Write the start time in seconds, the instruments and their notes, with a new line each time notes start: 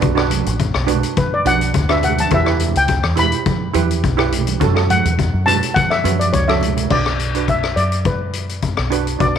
0.00 fingered electric bass B1, steel pan D4 F#4 B4, kick, closed hi-hat, low conga
0.15 steel pan D4 F#4 B4, cross-stick
0.30 closed hi-hat, high conga, low conga
0.46 fingered electric bass A1, closed hi-hat
0.60 kick, closed hi-hat
0.74 fingered electric bass B1, cross-stick
0.86 steel pan D4 F#4 B4, closed hi-hat, low conga
1.03 closed hi-hat
1.17 steel pan B4, kick, closed hi-hat, high conga
1.34 steel pan D5
1.45 fingered electric bass B1, steel pan D4 F#4 B4 F#5, closed hi-hat, high conga
1.61 closed hi-hat
1.74 fingered electric bass D2, kick, closed hi-hat
1.89 steel pan D4 F#4 B4 E5, cross-stick
2.03 steel pan F#5, closed hi-hat, low conga
2.18 steel pan A5, closed hi-hat, high conga
2.30 fingered electric bass E2, steel pan E4 G4 B4 E5, kick, closed hi-hat, low conga
2.45 steel pan E4 G4 B4, cross-stick
2.60 closed hi-hat, low conga
2.75 fingered electric bass C#2, steel pan G5, closed hi-hat
2.88 kick, closed hi-hat
3.03 fingered electric bass E2, cross-stick
3.16 steel pan E4 G4 B4 B5, closed hi-hat, low conga
3.32 closed hi-hat
3.46 kick, closed hi-hat, high conga
3.74 fingered electric bass E2, steel pan E4 G4 B4, closed hi-hat, high conga
3.91 closed hi-hat
4.04 fingered electric bass B1, kick, closed hi-hat
4.17 steel pan E4 G4 B4, cross-stick
4.32 closed hi-hat, low conga
4.47 closed hi-hat, high conga
4.60 fingered electric bass F#2, steel pan C#4 F#4 A4, kick, closed hi-hat, low conga
4.74 steel pan C#4 F#4 A4, cross-stick
4.90 steel pan F#5, closed hi-hat, high conga, low conga
5.05 fingered electric bass E2, closed hi-hat
5.19 kick, closed hi-hat
5.34 fingered electric bass F#2
5.46 steel pan C#4 F#4 B4 A5, closed hi-hat, low conga
5.63 closed hi-hat
5.74 steel pan F#5, kick, closed hi-hat, high conga
5.90 steel pan E5, cross-stick
6.04 fingered electric bass F#2, steel pan C#4 F#4 B4, closed hi-hat, high conga
6.19 steel pan D5, closed hi-hat, high conga
6.33 fingered electric bass C#2, steel pan C#5, kick, closed hi-hat, high conga
6.48 steel pan C#4 F#4 A4 E5, cross-stick, high conga
6.61 closed hi-hat, low conga
6.77 closed hi-hat, low conga
6.90 fingered electric bass B1, steel pan D4 F#4 B4 D5, kick, crash
7.06 cross-stick
7.19 closed hi-hat
7.35 steel pan D4 F#4 B4, closed hi-hat
7.48 steel pan E5, kick, closed hi-hat
7.63 cross-stick
7.76 fingered electric bass F#2, steel pan D5, closed hi-hat
7.92 closed hi-hat
8.05 steel pan B4, kick, closed hi-hat
8.33 closed hi-hat
8.49 closed hi-hat
8.62 kick, closed hi-hat
8.77 fingered electric bass B1, cross-stick
8.90 steel pan D4 F#4 B4, closed hi-hat
9.07 closed hi-hat
9.19 fingered electric bass B1, steel pan D4 F#4 B4 D5, kick, closed hi-hat
9.28 steel pan D5